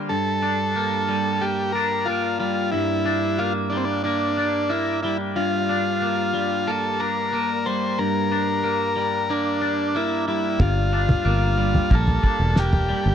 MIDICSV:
0, 0, Header, 1, 5, 480
1, 0, Start_track
1, 0, Tempo, 655738
1, 77, Time_signature, 4, 2, 24, 8
1, 9624, End_track
2, 0, Start_track
2, 0, Title_t, "Transistor combo organ"
2, 0, Program_c, 0, 18
2, 68, Note_on_c, 0, 69, 102
2, 1036, Note_on_c, 0, 67, 95
2, 1063, Note_off_c, 0, 69, 0
2, 1261, Note_off_c, 0, 67, 0
2, 1262, Note_on_c, 0, 70, 109
2, 1504, Note_on_c, 0, 65, 104
2, 1519, Note_off_c, 0, 70, 0
2, 1745, Note_off_c, 0, 65, 0
2, 1754, Note_on_c, 0, 65, 87
2, 1980, Note_off_c, 0, 65, 0
2, 1988, Note_on_c, 0, 64, 102
2, 2477, Note_on_c, 0, 65, 99
2, 2489, Note_off_c, 0, 64, 0
2, 2586, Note_off_c, 0, 65, 0
2, 2706, Note_on_c, 0, 62, 88
2, 2758, Note_on_c, 0, 60, 68
2, 2766, Note_off_c, 0, 62, 0
2, 2814, Note_on_c, 0, 62, 92
2, 2816, Note_off_c, 0, 60, 0
2, 2945, Note_off_c, 0, 62, 0
2, 2954, Note_on_c, 0, 62, 95
2, 3439, Note_on_c, 0, 64, 97
2, 3453, Note_off_c, 0, 62, 0
2, 3664, Note_off_c, 0, 64, 0
2, 3680, Note_on_c, 0, 64, 90
2, 3788, Note_off_c, 0, 64, 0
2, 3924, Note_on_c, 0, 65, 100
2, 4886, Note_on_c, 0, 69, 99
2, 4911, Note_off_c, 0, 65, 0
2, 5122, Note_on_c, 0, 70, 101
2, 5131, Note_off_c, 0, 69, 0
2, 5607, Note_on_c, 0, 72, 93
2, 5616, Note_off_c, 0, 70, 0
2, 5845, Note_on_c, 0, 70, 101
2, 5851, Note_off_c, 0, 72, 0
2, 6809, Note_on_c, 0, 62, 90
2, 6831, Note_off_c, 0, 70, 0
2, 7291, Note_on_c, 0, 64, 84
2, 7298, Note_off_c, 0, 62, 0
2, 7508, Note_off_c, 0, 64, 0
2, 7524, Note_on_c, 0, 64, 80
2, 7768, Note_off_c, 0, 64, 0
2, 7768, Note_on_c, 0, 65, 100
2, 8743, Note_on_c, 0, 69, 94
2, 8750, Note_off_c, 0, 65, 0
2, 9217, Note_on_c, 0, 67, 91
2, 9223, Note_off_c, 0, 69, 0
2, 9624, Note_off_c, 0, 67, 0
2, 9624, End_track
3, 0, Start_track
3, 0, Title_t, "Clean electric guitar"
3, 0, Program_c, 1, 27
3, 0, Note_on_c, 1, 50, 59
3, 0, Note_on_c, 1, 55, 71
3, 0, Note_on_c, 1, 58, 75
3, 0, Note_on_c, 1, 62, 68
3, 71, Note_on_c, 1, 43, 73
3, 75, Note_off_c, 1, 55, 0
3, 77, Note_off_c, 1, 58, 0
3, 78, Note_off_c, 1, 62, 0
3, 81, Note_off_c, 1, 50, 0
3, 310, Note_on_c, 1, 62, 80
3, 556, Note_on_c, 1, 58, 73
3, 795, Note_on_c, 1, 55, 72
3, 1030, Note_off_c, 1, 58, 0
3, 1033, Note_on_c, 1, 58, 72
3, 1279, Note_off_c, 1, 62, 0
3, 1282, Note_on_c, 1, 62, 75
3, 1516, Note_off_c, 1, 58, 0
3, 1519, Note_on_c, 1, 58, 67
3, 1754, Note_off_c, 1, 55, 0
3, 1757, Note_on_c, 1, 55, 72
3, 1995, Note_off_c, 1, 43, 0
3, 1998, Note_on_c, 1, 43, 78
3, 2234, Note_off_c, 1, 62, 0
3, 2237, Note_on_c, 1, 62, 81
3, 2479, Note_off_c, 1, 58, 0
3, 2482, Note_on_c, 1, 58, 76
3, 2724, Note_off_c, 1, 55, 0
3, 2727, Note_on_c, 1, 55, 60
3, 2961, Note_off_c, 1, 58, 0
3, 2964, Note_on_c, 1, 58, 79
3, 3200, Note_off_c, 1, 62, 0
3, 3203, Note_on_c, 1, 62, 77
3, 3434, Note_off_c, 1, 58, 0
3, 3437, Note_on_c, 1, 58, 72
3, 3687, Note_off_c, 1, 55, 0
3, 3690, Note_on_c, 1, 55, 71
3, 3920, Note_off_c, 1, 43, 0
3, 3923, Note_on_c, 1, 43, 79
3, 4164, Note_off_c, 1, 62, 0
3, 4167, Note_on_c, 1, 62, 84
3, 4400, Note_off_c, 1, 58, 0
3, 4403, Note_on_c, 1, 58, 68
3, 4635, Note_off_c, 1, 55, 0
3, 4637, Note_on_c, 1, 55, 68
3, 4882, Note_off_c, 1, 58, 0
3, 4885, Note_on_c, 1, 58, 81
3, 5121, Note_off_c, 1, 62, 0
3, 5124, Note_on_c, 1, 62, 68
3, 5360, Note_off_c, 1, 58, 0
3, 5363, Note_on_c, 1, 58, 75
3, 5604, Note_off_c, 1, 55, 0
3, 5607, Note_on_c, 1, 55, 69
3, 5842, Note_off_c, 1, 43, 0
3, 5845, Note_on_c, 1, 43, 73
3, 6084, Note_off_c, 1, 62, 0
3, 6087, Note_on_c, 1, 62, 80
3, 6320, Note_off_c, 1, 58, 0
3, 6323, Note_on_c, 1, 58, 67
3, 6558, Note_off_c, 1, 55, 0
3, 6561, Note_on_c, 1, 55, 63
3, 6802, Note_off_c, 1, 58, 0
3, 6805, Note_on_c, 1, 58, 72
3, 7035, Note_off_c, 1, 62, 0
3, 7038, Note_on_c, 1, 62, 78
3, 7279, Note_off_c, 1, 58, 0
3, 7282, Note_on_c, 1, 58, 74
3, 7520, Note_off_c, 1, 55, 0
3, 7523, Note_on_c, 1, 55, 68
3, 7754, Note_off_c, 1, 43, 0
3, 7757, Note_on_c, 1, 43, 76
3, 7997, Note_off_c, 1, 62, 0
3, 8000, Note_on_c, 1, 62, 79
3, 8230, Note_off_c, 1, 58, 0
3, 8233, Note_on_c, 1, 58, 77
3, 8471, Note_off_c, 1, 55, 0
3, 8474, Note_on_c, 1, 55, 67
3, 8711, Note_off_c, 1, 58, 0
3, 8714, Note_on_c, 1, 58, 80
3, 8950, Note_off_c, 1, 62, 0
3, 8953, Note_on_c, 1, 62, 68
3, 9191, Note_off_c, 1, 58, 0
3, 9194, Note_on_c, 1, 58, 69
3, 9432, Note_off_c, 1, 55, 0
3, 9435, Note_on_c, 1, 55, 70
3, 9624, Note_off_c, 1, 43, 0
3, 9624, Note_off_c, 1, 55, 0
3, 9624, Note_off_c, 1, 58, 0
3, 9624, Note_off_c, 1, 62, 0
3, 9624, End_track
4, 0, Start_track
4, 0, Title_t, "Fingered electric bass"
4, 0, Program_c, 2, 33
4, 7758, Note_on_c, 2, 31, 85
4, 8150, Note_off_c, 2, 31, 0
4, 8239, Note_on_c, 2, 31, 92
4, 8630, Note_off_c, 2, 31, 0
4, 8716, Note_on_c, 2, 34, 92
4, 8912, Note_off_c, 2, 34, 0
4, 9073, Note_on_c, 2, 28, 82
4, 9466, Note_off_c, 2, 28, 0
4, 9557, Note_on_c, 2, 31, 87
4, 9624, Note_off_c, 2, 31, 0
4, 9624, End_track
5, 0, Start_track
5, 0, Title_t, "Drums"
5, 7757, Note_on_c, 9, 43, 88
5, 7758, Note_on_c, 9, 36, 107
5, 7830, Note_off_c, 9, 43, 0
5, 7831, Note_off_c, 9, 36, 0
5, 8117, Note_on_c, 9, 43, 85
5, 8117, Note_on_c, 9, 47, 83
5, 8190, Note_off_c, 9, 43, 0
5, 8190, Note_off_c, 9, 47, 0
5, 8599, Note_on_c, 9, 43, 80
5, 8672, Note_off_c, 9, 43, 0
5, 8718, Note_on_c, 9, 36, 121
5, 8792, Note_off_c, 9, 36, 0
5, 8837, Note_on_c, 9, 43, 90
5, 8910, Note_off_c, 9, 43, 0
5, 8957, Note_on_c, 9, 36, 79
5, 9030, Note_off_c, 9, 36, 0
5, 9195, Note_on_c, 9, 38, 70
5, 9269, Note_off_c, 9, 38, 0
5, 9316, Note_on_c, 9, 43, 88
5, 9389, Note_off_c, 9, 43, 0
5, 9624, End_track
0, 0, End_of_file